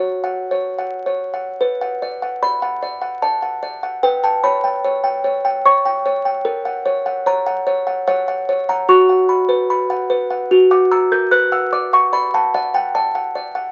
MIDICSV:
0, 0, Header, 1, 2, 480
1, 0, Start_track
1, 0, Key_signature, 2, "minor"
1, 0, Tempo, 810811
1, 952, Time_signature, 3, 2, 24, 8
1, 8122, End_track
2, 0, Start_track
2, 0, Title_t, "Music box"
2, 0, Program_c, 0, 10
2, 0, Note_on_c, 0, 66, 49
2, 0, Note_on_c, 0, 73, 44
2, 0, Note_on_c, 0, 78, 40
2, 0, Note_on_c, 0, 82, 69
2, 80, Note_off_c, 0, 78, 0
2, 140, Note_on_c, 0, 78, 51
2, 241, Note_off_c, 0, 73, 0
2, 303, Note_on_c, 0, 73, 45
2, 401, Note_off_c, 0, 78, 0
2, 465, Note_on_c, 0, 78, 43
2, 563, Note_off_c, 0, 73, 0
2, 629, Note_on_c, 0, 73, 41
2, 685, Note_off_c, 0, 82, 0
2, 725, Note_off_c, 0, 78, 0
2, 791, Note_on_c, 0, 78, 38
2, 887, Note_off_c, 0, 73, 0
2, 927, Note_off_c, 0, 66, 0
2, 951, Note_on_c, 0, 71, 60
2, 952, Note_off_c, 0, 78, 0
2, 1074, Note_on_c, 0, 78, 55
2, 1197, Note_on_c, 0, 74, 51
2, 1266, Note_off_c, 0, 78, 0
2, 1316, Note_on_c, 0, 78, 53
2, 1388, Note_off_c, 0, 74, 0
2, 1436, Note_on_c, 0, 74, 55
2, 1436, Note_on_c, 0, 83, 97
2, 1507, Note_off_c, 0, 78, 0
2, 1552, Note_on_c, 0, 78, 63
2, 1627, Note_off_c, 0, 74, 0
2, 1673, Note_on_c, 0, 74, 55
2, 1745, Note_off_c, 0, 78, 0
2, 1785, Note_on_c, 0, 78, 45
2, 1864, Note_off_c, 0, 74, 0
2, 1895, Note_off_c, 0, 83, 0
2, 1908, Note_on_c, 0, 81, 87
2, 1910, Note_on_c, 0, 74, 56
2, 1980, Note_off_c, 0, 78, 0
2, 2028, Note_on_c, 0, 78, 42
2, 2102, Note_off_c, 0, 74, 0
2, 2147, Note_on_c, 0, 74, 46
2, 2221, Note_off_c, 0, 78, 0
2, 2268, Note_on_c, 0, 78, 46
2, 2341, Note_off_c, 0, 74, 0
2, 2367, Note_off_c, 0, 71, 0
2, 2370, Note_off_c, 0, 81, 0
2, 2387, Note_on_c, 0, 71, 65
2, 2387, Note_on_c, 0, 79, 93
2, 2390, Note_off_c, 0, 78, 0
2, 2501, Note_off_c, 0, 79, 0
2, 2508, Note_on_c, 0, 79, 54
2, 2509, Note_on_c, 0, 81, 95
2, 2626, Note_on_c, 0, 83, 100
2, 2628, Note_on_c, 0, 73, 54
2, 2630, Note_off_c, 0, 81, 0
2, 2701, Note_off_c, 0, 79, 0
2, 2745, Note_on_c, 0, 79, 53
2, 2820, Note_off_c, 0, 73, 0
2, 2868, Note_on_c, 0, 73, 57
2, 2939, Note_off_c, 0, 79, 0
2, 2982, Note_on_c, 0, 79, 66
2, 3060, Note_off_c, 0, 73, 0
2, 3104, Note_on_c, 0, 73, 55
2, 3176, Note_off_c, 0, 79, 0
2, 3225, Note_on_c, 0, 79, 60
2, 3297, Note_off_c, 0, 73, 0
2, 3321, Note_off_c, 0, 83, 0
2, 3348, Note_on_c, 0, 73, 58
2, 3348, Note_on_c, 0, 85, 98
2, 3417, Note_off_c, 0, 79, 0
2, 3466, Note_on_c, 0, 79, 59
2, 3538, Note_off_c, 0, 73, 0
2, 3586, Note_on_c, 0, 73, 54
2, 3657, Note_off_c, 0, 79, 0
2, 3702, Note_on_c, 0, 79, 49
2, 3776, Note_off_c, 0, 73, 0
2, 3798, Note_off_c, 0, 71, 0
2, 3805, Note_off_c, 0, 85, 0
2, 3818, Note_on_c, 0, 70, 78
2, 3823, Note_off_c, 0, 79, 0
2, 3939, Note_on_c, 0, 78, 56
2, 4059, Note_on_c, 0, 73, 61
2, 4132, Note_off_c, 0, 78, 0
2, 4180, Note_on_c, 0, 78, 59
2, 4251, Note_off_c, 0, 73, 0
2, 4300, Note_on_c, 0, 73, 64
2, 4303, Note_on_c, 0, 82, 114
2, 4372, Note_off_c, 0, 78, 0
2, 4419, Note_on_c, 0, 78, 73
2, 4492, Note_off_c, 0, 73, 0
2, 4539, Note_on_c, 0, 73, 62
2, 4611, Note_off_c, 0, 78, 0
2, 4658, Note_on_c, 0, 78, 60
2, 4731, Note_off_c, 0, 73, 0
2, 4762, Note_off_c, 0, 82, 0
2, 4774, Note_off_c, 0, 78, 0
2, 4781, Note_on_c, 0, 73, 64
2, 4781, Note_on_c, 0, 78, 97
2, 4895, Note_off_c, 0, 78, 0
2, 4902, Note_on_c, 0, 78, 57
2, 4973, Note_off_c, 0, 73, 0
2, 5026, Note_on_c, 0, 73, 56
2, 5093, Note_off_c, 0, 78, 0
2, 5144, Note_on_c, 0, 78, 49
2, 5146, Note_on_c, 0, 82, 87
2, 5215, Note_off_c, 0, 73, 0
2, 5234, Note_off_c, 0, 70, 0
2, 5261, Note_on_c, 0, 66, 72
2, 5262, Note_on_c, 0, 85, 111
2, 5263, Note_off_c, 0, 78, 0
2, 5264, Note_off_c, 0, 82, 0
2, 5383, Note_on_c, 0, 78, 53
2, 5500, Note_on_c, 0, 83, 58
2, 5575, Note_off_c, 0, 78, 0
2, 5616, Note_on_c, 0, 71, 58
2, 5694, Note_off_c, 0, 83, 0
2, 5743, Note_on_c, 0, 83, 65
2, 5812, Note_off_c, 0, 71, 0
2, 5861, Note_on_c, 0, 78, 59
2, 5936, Note_off_c, 0, 83, 0
2, 5978, Note_on_c, 0, 71, 60
2, 6055, Note_off_c, 0, 78, 0
2, 6101, Note_on_c, 0, 78, 51
2, 6174, Note_off_c, 0, 71, 0
2, 6201, Note_off_c, 0, 66, 0
2, 6202, Note_off_c, 0, 85, 0
2, 6222, Note_on_c, 0, 66, 74
2, 6223, Note_off_c, 0, 78, 0
2, 6340, Note_on_c, 0, 78, 52
2, 6342, Note_on_c, 0, 86, 86
2, 6462, Note_on_c, 0, 82, 58
2, 6462, Note_on_c, 0, 88, 89
2, 6464, Note_off_c, 0, 86, 0
2, 6536, Note_off_c, 0, 78, 0
2, 6582, Note_on_c, 0, 70, 48
2, 6583, Note_on_c, 0, 91, 80
2, 6585, Note_off_c, 0, 88, 0
2, 6657, Note_off_c, 0, 82, 0
2, 6691, Note_off_c, 0, 66, 0
2, 6698, Note_on_c, 0, 90, 100
2, 6699, Note_on_c, 0, 71, 64
2, 6705, Note_off_c, 0, 70, 0
2, 6705, Note_off_c, 0, 91, 0
2, 6820, Note_on_c, 0, 78, 57
2, 6822, Note_on_c, 0, 88, 87
2, 6823, Note_off_c, 0, 90, 0
2, 6942, Note_on_c, 0, 74, 53
2, 6942, Note_on_c, 0, 86, 95
2, 6946, Note_off_c, 0, 88, 0
2, 7017, Note_off_c, 0, 78, 0
2, 7063, Note_on_c, 0, 78, 53
2, 7065, Note_on_c, 0, 85, 90
2, 7066, Note_off_c, 0, 86, 0
2, 7138, Note_off_c, 0, 74, 0
2, 7180, Note_on_c, 0, 74, 58
2, 7181, Note_on_c, 0, 83, 100
2, 7187, Note_off_c, 0, 85, 0
2, 7258, Note_off_c, 0, 78, 0
2, 7305, Note_off_c, 0, 83, 0
2, 7306, Note_on_c, 0, 78, 62
2, 7309, Note_on_c, 0, 81, 95
2, 7377, Note_off_c, 0, 74, 0
2, 7419, Note_off_c, 0, 78, 0
2, 7426, Note_on_c, 0, 78, 91
2, 7427, Note_on_c, 0, 74, 60
2, 7429, Note_off_c, 0, 81, 0
2, 7536, Note_off_c, 0, 78, 0
2, 7543, Note_on_c, 0, 78, 52
2, 7545, Note_on_c, 0, 79, 84
2, 7620, Note_off_c, 0, 74, 0
2, 7665, Note_on_c, 0, 81, 97
2, 7666, Note_on_c, 0, 74, 59
2, 7667, Note_off_c, 0, 79, 0
2, 7738, Note_off_c, 0, 78, 0
2, 7786, Note_on_c, 0, 78, 50
2, 7859, Note_off_c, 0, 74, 0
2, 7905, Note_on_c, 0, 74, 55
2, 7979, Note_off_c, 0, 78, 0
2, 8022, Note_on_c, 0, 78, 58
2, 8099, Note_off_c, 0, 74, 0
2, 8120, Note_off_c, 0, 71, 0
2, 8122, Note_off_c, 0, 78, 0
2, 8122, Note_off_c, 0, 81, 0
2, 8122, End_track
0, 0, End_of_file